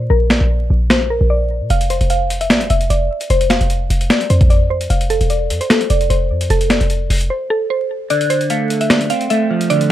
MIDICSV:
0, 0, Header, 1, 5, 480
1, 0, Start_track
1, 0, Key_signature, -1, "major"
1, 0, Tempo, 400000
1, 121, Time_signature, 4, 2, 24, 8
1, 11902, End_track
2, 0, Start_track
2, 0, Title_t, "Synth pluck"
2, 0, Program_c, 0, 84
2, 120, Note_on_c, 0, 70, 99
2, 319, Note_off_c, 0, 70, 0
2, 362, Note_on_c, 0, 74, 76
2, 1038, Note_off_c, 0, 74, 0
2, 1080, Note_on_c, 0, 72, 84
2, 1280, Note_off_c, 0, 72, 0
2, 1323, Note_on_c, 0, 70, 75
2, 1521, Note_off_c, 0, 70, 0
2, 1560, Note_on_c, 0, 74, 75
2, 2012, Note_off_c, 0, 74, 0
2, 2045, Note_on_c, 0, 77, 99
2, 2242, Note_off_c, 0, 77, 0
2, 2282, Note_on_c, 0, 72, 76
2, 2480, Note_off_c, 0, 72, 0
2, 2522, Note_on_c, 0, 77, 79
2, 2867, Note_off_c, 0, 77, 0
2, 2890, Note_on_c, 0, 76, 75
2, 2983, Note_off_c, 0, 76, 0
2, 3006, Note_on_c, 0, 74, 78
2, 3203, Note_off_c, 0, 74, 0
2, 3243, Note_on_c, 0, 76, 85
2, 3441, Note_off_c, 0, 76, 0
2, 3481, Note_on_c, 0, 74, 88
2, 3932, Note_off_c, 0, 74, 0
2, 3964, Note_on_c, 0, 72, 104
2, 4162, Note_off_c, 0, 72, 0
2, 4200, Note_on_c, 0, 77, 83
2, 4878, Note_off_c, 0, 77, 0
2, 4922, Note_on_c, 0, 74, 83
2, 5121, Note_off_c, 0, 74, 0
2, 5159, Note_on_c, 0, 72, 84
2, 5359, Note_off_c, 0, 72, 0
2, 5399, Note_on_c, 0, 74, 78
2, 5599, Note_off_c, 0, 74, 0
2, 5643, Note_on_c, 0, 72, 82
2, 5842, Note_off_c, 0, 72, 0
2, 5881, Note_on_c, 0, 77, 84
2, 6080, Note_off_c, 0, 77, 0
2, 6121, Note_on_c, 0, 69, 84
2, 6320, Note_off_c, 0, 69, 0
2, 6361, Note_on_c, 0, 74, 70
2, 6707, Note_off_c, 0, 74, 0
2, 6729, Note_on_c, 0, 72, 76
2, 6822, Note_off_c, 0, 72, 0
2, 6845, Note_on_c, 0, 69, 79
2, 7042, Note_off_c, 0, 69, 0
2, 7082, Note_on_c, 0, 74, 85
2, 7281, Note_off_c, 0, 74, 0
2, 7319, Note_on_c, 0, 72, 82
2, 7772, Note_off_c, 0, 72, 0
2, 7803, Note_on_c, 0, 69, 98
2, 8001, Note_off_c, 0, 69, 0
2, 8043, Note_on_c, 0, 74, 72
2, 8719, Note_off_c, 0, 74, 0
2, 8762, Note_on_c, 0, 72, 80
2, 8961, Note_off_c, 0, 72, 0
2, 9003, Note_on_c, 0, 69, 84
2, 9201, Note_off_c, 0, 69, 0
2, 9242, Note_on_c, 0, 72, 71
2, 9693, Note_off_c, 0, 72, 0
2, 9723, Note_on_c, 0, 74, 94
2, 9921, Note_off_c, 0, 74, 0
2, 9959, Note_on_c, 0, 72, 78
2, 10159, Note_off_c, 0, 72, 0
2, 10203, Note_on_c, 0, 77, 75
2, 10548, Note_off_c, 0, 77, 0
2, 10571, Note_on_c, 0, 76, 75
2, 10664, Note_off_c, 0, 76, 0
2, 10682, Note_on_c, 0, 74, 72
2, 10881, Note_off_c, 0, 74, 0
2, 10920, Note_on_c, 0, 77, 82
2, 11120, Note_off_c, 0, 77, 0
2, 11162, Note_on_c, 0, 76, 85
2, 11613, Note_off_c, 0, 76, 0
2, 11639, Note_on_c, 0, 74, 99
2, 11839, Note_off_c, 0, 74, 0
2, 11902, End_track
3, 0, Start_track
3, 0, Title_t, "Clean electric guitar"
3, 0, Program_c, 1, 27
3, 9723, Note_on_c, 1, 50, 86
3, 10204, Note_on_c, 1, 57, 81
3, 10922, Note_off_c, 1, 50, 0
3, 10922, Note_on_c, 1, 60, 82
3, 11151, Note_off_c, 1, 57, 0
3, 11165, Note_on_c, 1, 57, 95
3, 11402, Note_on_c, 1, 53, 74
3, 11643, Note_on_c, 1, 50, 94
3, 11902, Note_off_c, 1, 50, 0
3, 11902, Note_off_c, 1, 53, 0
3, 11902, Note_off_c, 1, 57, 0
3, 11902, Note_off_c, 1, 60, 0
3, 11902, End_track
4, 0, Start_track
4, 0, Title_t, "808-style bass"
4, 0, Program_c, 2, 38
4, 122, Note_on_c, 2, 34, 115
4, 474, Note_off_c, 2, 34, 0
4, 489, Note_on_c, 2, 34, 97
4, 828, Note_off_c, 2, 34, 0
4, 843, Note_on_c, 2, 34, 107
4, 1425, Note_off_c, 2, 34, 0
4, 1450, Note_on_c, 2, 34, 108
4, 1930, Note_on_c, 2, 46, 98
4, 1948, Note_off_c, 2, 34, 0
4, 2036, Note_off_c, 2, 46, 0
4, 2042, Note_on_c, 2, 29, 113
4, 2394, Note_off_c, 2, 29, 0
4, 2409, Note_on_c, 2, 29, 104
4, 3002, Note_on_c, 2, 33, 99
4, 3020, Note_off_c, 2, 29, 0
4, 3129, Note_on_c, 2, 29, 99
4, 3147, Note_off_c, 2, 33, 0
4, 3236, Note_off_c, 2, 29, 0
4, 3242, Note_on_c, 2, 29, 107
4, 3472, Note_off_c, 2, 29, 0
4, 3481, Note_on_c, 2, 29, 103
4, 3712, Note_off_c, 2, 29, 0
4, 3962, Note_on_c, 2, 29, 114
4, 4314, Note_off_c, 2, 29, 0
4, 4330, Note_on_c, 2, 29, 100
4, 4668, Note_off_c, 2, 29, 0
4, 4682, Note_on_c, 2, 29, 105
4, 4912, Note_off_c, 2, 29, 0
4, 5162, Note_on_c, 2, 41, 106
4, 5853, Note_off_c, 2, 41, 0
4, 5882, Note_on_c, 2, 29, 116
4, 6234, Note_off_c, 2, 29, 0
4, 6249, Note_on_c, 2, 28, 105
4, 6602, Note_on_c, 2, 41, 100
4, 6620, Note_off_c, 2, 28, 0
4, 6723, Note_off_c, 2, 41, 0
4, 7082, Note_on_c, 2, 29, 104
4, 7312, Note_off_c, 2, 29, 0
4, 7322, Note_on_c, 2, 29, 106
4, 7562, Note_on_c, 2, 41, 100
4, 7580, Note_off_c, 2, 29, 0
4, 7790, Note_off_c, 2, 41, 0
4, 7801, Note_on_c, 2, 29, 112
4, 8154, Note_off_c, 2, 29, 0
4, 8170, Note_on_c, 2, 29, 99
4, 8508, Note_off_c, 2, 29, 0
4, 8521, Note_on_c, 2, 29, 107
4, 8752, Note_off_c, 2, 29, 0
4, 11902, End_track
5, 0, Start_track
5, 0, Title_t, "Drums"
5, 361, Note_on_c, 9, 38, 87
5, 370, Note_on_c, 9, 26, 69
5, 481, Note_off_c, 9, 38, 0
5, 490, Note_off_c, 9, 26, 0
5, 1081, Note_on_c, 9, 38, 123
5, 1089, Note_on_c, 9, 26, 102
5, 1201, Note_off_c, 9, 38, 0
5, 1209, Note_off_c, 9, 26, 0
5, 2042, Note_on_c, 9, 42, 71
5, 2162, Note_off_c, 9, 42, 0
5, 2170, Note_on_c, 9, 42, 57
5, 2281, Note_off_c, 9, 42, 0
5, 2281, Note_on_c, 9, 42, 75
5, 2401, Note_off_c, 9, 42, 0
5, 2409, Note_on_c, 9, 42, 47
5, 2519, Note_off_c, 9, 42, 0
5, 2519, Note_on_c, 9, 42, 69
5, 2639, Note_off_c, 9, 42, 0
5, 2764, Note_on_c, 9, 42, 85
5, 2884, Note_off_c, 9, 42, 0
5, 2890, Note_on_c, 9, 42, 58
5, 3000, Note_on_c, 9, 38, 122
5, 3003, Note_off_c, 9, 42, 0
5, 3003, Note_on_c, 9, 42, 84
5, 3009, Note_on_c, 9, 26, 102
5, 3120, Note_off_c, 9, 38, 0
5, 3123, Note_off_c, 9, 42, 0
5, 3129, Note_off_c, 9, 26, 0
5, 3129, Note_on_c, 9, 42, 57
5, 3240, Note_off_c, 9, 42, 0
5, 3240, Note_on_c, 9, 42, 78
5, 3360, Note_off_c, 9, 42, 0
5, 3368, Note_on_c, 9, 42, 49
5, 3483, Note_off_c, 9, 42, 0
5, 3483, Note_on_c, 9, 42, 73
5, 3603, Note_off_c, 9, 42, 0
5, 3850, Note_on_c, 9, 42, 70
5, 3962, Note_off_c, 9, 42, 0
5, 3962, Note_on_c, 9, 42, 71
5, 4082, Note_off_c, 9, 42, 0
5, 4090, Note_on_c, 9, 42, 59
5, 4201, Note_off_c, 9, 42, 0
5, 4201, Note_on_c, 9, 38, 83
5, 4201, Note_on_c, 9, 42, 72
5, 4209, Note_on_c, 9, 26, 70
5, 4321, Note_off_c, 9, 38, 0
5, 4321, Note_off_c, 9, 42, 0
5, 4329, Note_off_c, 9, 26, 0
5, 4330, Note_on_c, 9, 42, 47
5, 4439, Note_off_c, 9, 42, 0
5, 4439, Note_on_c, 9, 42, 71
5, 4559, Note_off_c, 9, 42, 0
5, 4684, Note_on_c, 9, 42, 88
5, 4804, Note_off_c, 9, 42, 0
5, 4810, Note_on_c, 9, 42, 55
5, 4920, Note_on_c, 9, 38, 124
5, 4923, Note_off_c, 9, 42, 0
5, 4923, Note_on_c, 9, 42, 83
5, 4929, Note_on_c, 9, 26, 96
5, 5040, Note_off_c, 9, 38, 0
5, 5043, Note_off_c, 9, 42, 0
5, 5049, Note_off_c, 9, 26, 0
5, 5049, Note_on_c, 9, 42, 59
5, 5160, Note_off_c, 9, 42, 0
5, 5160, Note_on_c, 9, 42, 81
5, 5280, Note_off_c, 9, 42, 0
5, 5289, Note_on_c, 9, 36, 95
5, 5289, Note_on_c, 9, 42, 49
5, 5403, Note_off_c, 9, 42, 0
5, 5403, Note_on_c, 9, 42, 68
5, 5409, Note_off_c, 9, 36, 0
5, 5523, Note_off_c, 9, 42, 0
5, 5769, Note_on_c, 9, 42, 73
5, 5882, Note_off_c, 9, 42, 0
5, 5882, Note_on_c, 9, 42, 75
5, 6002, Note_off_c, 9, 42, 0
5, 6010, Note_on_c, 9, 42, 61
5, 6122, Note_off_c, 9, 42, 0
5, 6122, Note_on_c, 9, 42, 76
5, 6242, Note_off_c, 9, 42, 0
5, 6250, Note_on_c, 9, 42, 48
5, 6360, Note_off_c, 9, 42, 0
5, 6360, Note_on_c, 9, 42, 71
5, 6480, Note_off_c, 9, 42, 0
5, 6605, Note_on_c, 9, 42, 91
5, 6725, Note_off_c, 9, 42, 0
5, 6731, Note_on_c, 9, 42, 57
5, 6841, Note_on_c, 9, 38, 122
5, 6844, Note_off_c, 9, 42, 0
5, 6844, Note_on_c, 9, 42, 86
5, 6850, Note_on_c, 9, 26, 100
5, 6961, Note_off_c, 9, 38, 0
5, 6964, Note_off_c, 9, 42, 0
5, 6969, Note_on_c, 9, 42, 56
5, 6970, Note_off_c, 9, 26, 0
5, 7080, Note_off_c, 9, 42, 0
5, 7080, Note_on_c, 9, 42, 80
5, 7200, Note_off_c, 9, 42, 0
5, 7209, Note_on_c, 9, 42, 47
5, 7323, Note_off_c, 9, 42, 0
5, 7323, Note_on_c, 9, 42, 71
5, 7443, Note_off_c, 9, 42, 0
5, 7690, Note_on_c, 9, 42, 71
5, 7802, Note_off_c, 9, 42, 0
5, 7802, Note_on_c, 9, 42, 75
5, 7922, Note_off_c, 9, 42, 0
5, 7930, Note_on_c, 9, 42, 58
5, 8040, Note_on_c, 9, 38, 86
5, 8041, Note_off_c, 9, 42, 0
5, 8041, Note_on_c, 9, 42, 76
5, 8049, Note_on_c, 9, 26, 69
5, 8160, Note_off_c, 9, 38, 0
5, 8161, Note_off_c, 9, 42, 0
5, 8169, Note_off_c, 9, 26, 0
5, 8170, Note_on_c, 9, 42, 47
5, 8279, Note_off_c, 9, 42, 0
5, 8279, Note_on_c, 9, 42, 69
5, 8399, Note_off_c, 9, 42, 0
5, 8524, Note_on_c, 9, 46, 88
5, 8644, Note_off_c, 9, 46, 0
5, 8650, Note_on_c, 9, 42, 57
5, 8770, Note_off_c, 9, 42, 0
5, 9722, Note_on_c, 9, 42, 75
5, 9842, Note_off_c, 9, 42, 0
5, 9850, Note_on_c, 9, 42, 58
5, 9961, Note_off_c, 9, 42, 0
5, 9961, Note_on_c, 9, 42, 74
5, 10081, Note_off_c, 9, 42, 0
5, 10090, Note_on_c, 9, 42, 47
5, 10200, Note_off_c, 9, 42, 0
5, 10200, Note_on_c, 9, 42, 73
5, 10320, Note_off_c, 9, 42, 0
5, 10444, Note_on_c, 9, 42, 83
5, 10564, Note_off_c, 9, 42, 0
5, 10570, Note_on_c, 9, 42, 58
5, 10680, Note_on_c, 9, 38, 120
5, 10683, Note_off_c, 9, 42, 0
5, 10683, Note_on_c, 9, 42, 86
5, 10689, Note_on_c, 9, 26, 100
5, 10800, Note_off_c, 9, 38, 0
5, 10803, Note_off_c, 9, 42, 0
5, 10809, Note_off_c, 9, 26, 0
5, 10809, Note_on_c, 9, 42, 58
5, 10919, Note_off_c, 9, 42, 0
5, 10919, Note_on_c, 9, 42, 78
5, 11039, Note_off_c, 9, 42, 0
5, 11049, Note_on_c, 9, 42, 48
5, 11163, Note_off_c, 9, 42, 0
5, 11163, Note_on_c, 9, 42, 71
5, 11283, Note_off_c, 9, 42, 0
5, 11530, Note_on_c, 9, 42, 75
5, 11642, Note_off_c, 9, 42, 0
5, 11642, Note_on_c, 9, 42, 73
5, 11762, Note_off_c, 9, 42, 0
5, 11771, Note_on_c, 9, 42, 58
5, 11891, Note_off_c, 9, 42, 0
5, 11902, End_track
0, 0, End_of_file